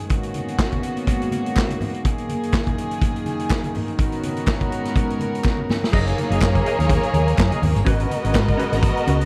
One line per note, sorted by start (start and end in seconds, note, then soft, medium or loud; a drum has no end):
0.00 2.01 D#3 medium
0.09 2.04 G#2 medium
0.09 3.96 A#3 medium
0.09 2.03 B3 medium
0.09 2.04 C#4 medium
0.09 2.04 F#4 medium
0.09 kick loud
0.09 closed hi-hat medium
0.23 closed hi-hat soft
0.34 closed hi-hat medium
0.34 muted conga soft
0.34 high conga medium
0.48 closed hi-hat soft
0.59 kick loud
0.59 snare loud
0.59 clap medium
0.59 muted conga soft
0.72 kick medium
0.72 closed hi-hat soft
0.72 high conga medium
0.83 closed hi-hat medium
0.83 muted conga soft
0.97 closed hi-hat soft
1.07 kick loud
1.07 closed hi-hat medium
1.07 low conga medium
1.22 closed hi-hat soft
1.32 closed hi-hat medium
1.32 high conga medium
1.46 closed hi-hat soft
1.56 kick loud
1.56 snare loud
1.56 clap loud
1.56 muted conga soft
1.59 clap medium
1.69 closed hi-hat soft
1.69 high conga medium
1.81 open hi-hat medium
1.81 low conga medium
1.94 closed hi-hat soft
2.05 3.97 F#2 medium
2.05 5.89 D#3 medium
2.05 3.97 G#4 medium
2.05 kick loud
2.05 closed hi-hat medium
2.05 muted conga soft
2.18 closed hi-hat soft
2.29 closed hi-hat medium
2.29 muted conga soft
2.29 high conga medium
2.43 closed hi-hat soft
2.53 kick loud
2.53 snare loud
2.53 clap medium
2.55 clap medium
2.67 kick medium
2.67 closed hi-hat soft
2.67 high conga medium
2.78 closed hi-hat medium
2.91 closed hi-hat soft
3.02 kick loud
3.02 closed hi-hat medium
3.02 muted conga soft
3.02 low conga medium
3.16 closed hi-hat soft
3.26 closed hi-hat medium
3.26 high conga medium
3.39 closed hi-hat soft
3.50 kick loud
3.50 snare loud
3.50 clap loud
3.52 clap medium
3.64 closed hi-hat soft
3.64 high conga medium
3.75 open hi-hat medium
3.75 low conga medium
3.88 closed hi-hat soft
3.98 5.91 G#2 medium
3.98 5.91 B3 medium
3.98 5.91 C#4 medium
3.98 5.91 F#4 medium
3.98 5.91 A#4 medium
3.98 kick loud
3.98 closed hi-hat medium
4.12 closed hi-hat soft
4.23 closed hi-hat medium
4.23 muted conga soft
4.23 high conga medium
4.37 closed hi-hat soft
4.47 kick loud
4.47 snare loud
4.47 clap medium
4.61 kick medium
4.61 closed hi-hat soft
4.61 high conga medium
4.72 closed hi-hat medium
4.85 snare soft
4.85 closed hi-hat soft
4.96 kick loud
4.96 closed hi-hat medium
4.96 muted conga soft
4.96 low conga medium
5.10 closed hi-hat soft
5.20 closed hi-hat medium
5.20 high conga medium
5.35 closed hi-hat soft
5.44 kick loud
5.44 snare medium
5.44 clap loud
5.57 high conga medium
5.70 snare medium
5.70 muted conga soft
5.70 low conga medium
5.84 snare medium
5.93 6.12 F#1 loud
5.93 7.85 F#3 medium
5.93 7.83 A#3 loud
5.93 7.85 D#4 medium
5.93 6.13 G#4 medium
5.93 7.85 G#4 medium
5.93 7.83 G#4 loud
5.93 7.85 A#4 loud
5.93 6.07 A#4 medium
5.93 7.83 C#5 medium
5.93 6.06 D#5 loud
5.93 kick loud
5.93 crash loud
6.07 muted clean electric guitar stroke medium
6.07 closed hi-hat soft
6.18 muted clean electric guitar stroke soft
6.18 closed hi-hat medium
6.18 high conga medium
6.30 6.39 F#1 loud
6.30 6.47 G#4 medium
6.30 6.47 A#4 medium
6.30 6.46 D#5 medium
6.30 closed hi-hat medium
6.41 6.60 F#2 loud
6.41 kick loud
6.41 snare loud
6.41 clap loud
6.43 clap loud
6.55 muted clean electric guitar stroke medium
6.55 kick medium
6.55 closed hi-hat soft
6.55 high conga medium
6.66 6.86 G#4 medium
6.66 6.79 A#4 medium
6.66 6.78 D#5 medium
6.66 closed hi-hat medium
6.66 muted conga soft
6.79 6.97 D#2 medium
6.79 muted clean electric guitar stroke soft
6.79 snare soft
6.79 closed hi-hat medium
6.90 muted clean electric guitar stroke soft
6.90 kick loud
6.90 closed hi-hat medium
6.90 muted conga soft
6.90 low conga medium
7.03 muted clean electric guitar stroke soft
7.03 closed hi-hat soft
7.14 7.32 D#2 loud
7.14 closed hi-hat medium
7.14 muted conga soft
7.14 high conga medium
7.27 muted clean electric guitar stroke medium
7.27 closed hi-hat medium
7.38 7.49 F#2 loud
7.38 muted clean electric guitar stroke soft
7.38 kick loud
7.38 snare loud
7.38 clap loud
7.38 muted conga soft
7.40 clap loud
7.51 7.60 G#4 medium
7.51 7.61 A#4 medium
7.51 7.62 D#5 medium
7.51 closed hi-hat medium
7.51 high conga medium
7.62 7.72 D#2 medium
7.62 muted clean electric guitar stroke soft
7.62 open hi-hat medium
7.62 muted conga soft
7.62 low conga medium
7.75 7.84 G1 loud
7.75 muted clean electric guitar stroke soft
7.75 closed hi-hat soft
7.75 low conga medium
7.85 8.05 G#1 loud
7.85 9.25 G#3 medium
7.85 9.25 B3 medium
7.85 8.06 C#4 medium
7.85 7.99 F#4 medium
7.85 9.25 F#4 medium
7.85 9.25 A#4 loud
7.85 7.98 B4 medium
7.85 9.25 D#5 loud
7.85 kick loud
7.85 closed hi-hat medium
7.99 muted clean electric guitar stroke soft
7.99 closed hi-hat medium
8.10 muted clean electric guitar stroke soft
8.10 closed hi-hat medium
8.10 high conga medium
8.23 8.33 G#1 medium
8.23 8.40 C#4 medium
8.23 8.40 F#4 medium
8.23 8.39 B4 medium
8.23 closed hi-hat medium
8.34 8.53 G#2 loud
8.34 kick loud
8.34 snare loud
8.34 clap medium
8.48 muted clean electric guitar stroke soft
8.48 kick medium
8.48 closed hi-hat soft
8.48 high conga medium
8.57 8.78 C#4 medium
8.57 8.72 F#4 medium
8.57 8.71 B4 medium
8.57 closed hi-hat medium
8.57 muted conga soft
8.72 8.91 G#1 medium
8.72 muted clean electric guitar stroke soft
8.72 snare soft
8.72 closed hi-hat medium
8.83 muted clean electric guitar stroke soft
8.83 kick loud
8.83 closed hi-hat medium
8.83 low conga medium
8.96 muted clean electric guitar stroke soft
8.96 closed hi-hat medium
9.07 9.25 C#2 medium
9.07 9.25 C#4 medium
9.07 9.21 F#4 medium
9.07 9.19 B4 medium
9.07 closed hi-hat medium
9.07 muted conga soft
9.07 high conga medium
9.20 muted clean electric guitar stroke medium
9.20 closed hi-hat medium